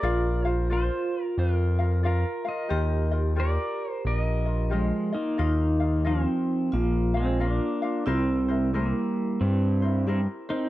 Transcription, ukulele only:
X:1
M:4/4
L:1/8
Q:"Swing" 1/4=90
K:Eb
V:1 name="Ukulele"
[FBdf] [FBf] [FBdf]3 [FBf] [FBdf] [FBf] | [FGBe] [FBe] [FGB]3 [FBe] [FGBe] [FBe] | [FBef] [FBf] [FBef]3 [FBf] [FBf] [FBf] | [=EGBc] [EBc] [EGBc]3 [EBc] [EGBc] [Bc] |]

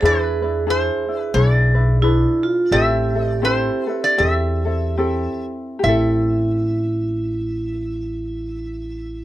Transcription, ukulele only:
X:1
M:4/4
L:1/8
Q:"Swing" 1/4=78
K:Am
V:1 name="Ukulele"
[DE^GB] [DEB] [DEG] [DE] [DEGB] [DEB] [DGB]2 | [CEGA] [CEA] [CEGA] [CEA] [CEGA] [CEA] [CEGA]2 | [CEGA]8 |]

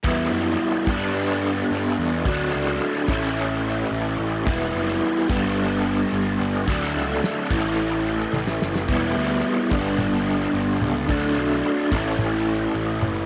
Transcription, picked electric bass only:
X:1
M:4/4
L:1/8
Q:1/4=109
K:Glyd
V:1 name="Picked electric bass" clef=bass
E,, F,, z G,,3 G,, E,, | D,, C,, z A,,,3 A,,, A,,, | E,,, F,,, z G,,,3 G,,, G,,, | D,, C,, z A,,,3 A,,, F,,, |
E,,, D,, z G,,,3 G,,, C,, | D,, B,,, z A,,,3 A,,, F,,, |]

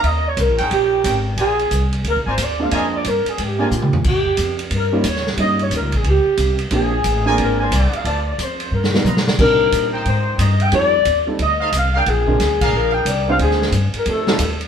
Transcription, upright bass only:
X:1
M:4/4
L:1/8
Q:"Swing" 1/4=180
K:Bbmix
V:1 name="Upright bass" clef=bass
E,,2 (3C,, B,,, G,,, B,,,2 A,,,2 | B,,,2 C,,2 (3D,, B,,, A,,, E,,2 | F,,2 G,, z A,,2 B,,2 | E,, z F,,2 G,,2 E,,2 |
G,,2 (3E,, _D,, B,,, D,, z C,,2 | B,,,2 =A,,,2 _A,,,2 C,, z | D,,2 F,,2 G,,2 =B,,2 | C,2 B,,2 A,,2 G,,2 |
F,,2 E,,2 D,,2 C,,2 | B,,,2 D,,2 B,,,2 C,,2 | D,,2 G,, z F,,2 E,,2 |]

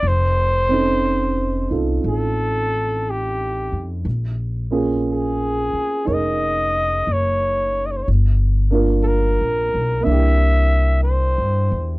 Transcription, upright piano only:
X:1
M:4/4
L:1/8
Q:"Swing" 1/4=60
K:Bblyd
V:1 name="Upright piano"
z [C_D_EA]2 [EFA]4- [EFA] | z [B,_DF_A]3 [_EAB]4 | z [B,DFB]3 [B,DEG]4 |]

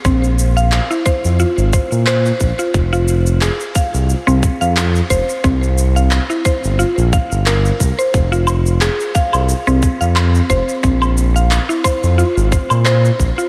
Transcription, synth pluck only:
X:1
M:4/4
L:1/16
Q:"Swing 16ths" 1/4=89
K:Fm
V:1 name="Synth pluck"
C z2 f z =E c z F z c z c3 F | z F z2 A2 f3 C z f z2 c z | C z2 f z =E c z F z f z B z2 c | z F z2 A2 f3 C z f z2 c z |
C z2 f z =E c z F z c z c3 F |]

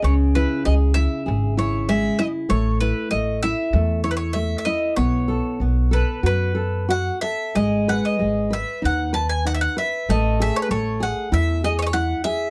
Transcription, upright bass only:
X:1
M:4/4
L:1/8
Q:1/4=96
K:Alyd
V:1 name="Upright bass" clef=bass
C,,2 C,,2 G,,,4 | A,,,2 A,,,2 E,,4 | B,,,2 B,,,2 F,,4 | G,,,2 G,,,2 D,,4 |
A,,,2 A,,,2 E,,4 |]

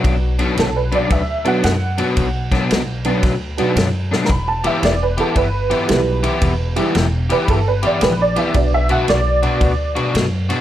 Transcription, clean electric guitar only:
X:1
M:4/4
L:1/8
Q:"Swing" 1/4=113
K:Bm
V:1 name="Clean electric guitar"
[B,,F,B,D] [B,,F,B,D] z [B,,F,B,D] z [B,,F,B,D] z [B,,F,B,D] | z [B,,F,B,D] z [B,,F,B,D] z [B,,F,B,D] z [B,,F,B,D] | z [E,B,EG] z [E,B,EG] z [E,B,EG] z [E,B,EG] | z [E,B,EG] z [E,B,EG] z [E,B,EG] z [E,B,EG] |
z [B,,B,DF] z [B,,B,DF] z [B,,B,DF] z [B,,B,DF] |]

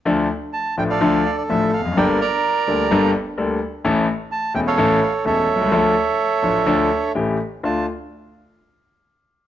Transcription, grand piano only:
X:1
M:4/4
L:1/16
Q:1/4=127
K:Dm
V:1 name="Grand piano" clef=bass
[D,,D,F,A,DA]2 z4 [A,,,A,,F,A,DA]2 [D,,D,F,A,DA]2 z2 [A,,,A,,F,A,DA]2 z/2 E,,/2 F,,/2 ^F,,/2 | [G,,,G,,G,B,DA]2 z4 [D,,D,G,B,DA]2 [G,,,G,,G,B,DA]2 z2 [D,,D,G,B,DA]2 z2 | [A,,,A,,E,A,^CA]2 z4 [E,,,E,,E,A,CA]2 [A,,,A,,E,A,CA]2 z2 [E,,,E,,E,A,CA]2 z/2 =B,,,/2 =C,,/2 ^C,,/2 | [D,,D,F,A,DA]2 z4 [A,,,A,,F,A,DA]2 [D,,D,F,A,DA]2 z2 [A,,,A,,E,A,^CG]2 z2 |
[D,,A,DF]2 z12 z2 |]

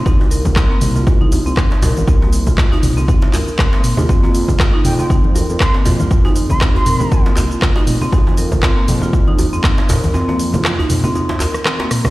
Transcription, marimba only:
X:1
M:4/4
L:1/16
Q:"Swing 16ths" 1/4=119
K:Fdor
V:1 name="Marimba"
E z B z C B, z F z E z C E z B z | C B, z F z E z C E z B z C B, z F | C B, z F z E z C E z B z C B, z F | z E z C E z B z C B, z F z E z C |
E z B z C B, z F z E z C E z B z | C B, z F z E z C E z B z C B, z F |]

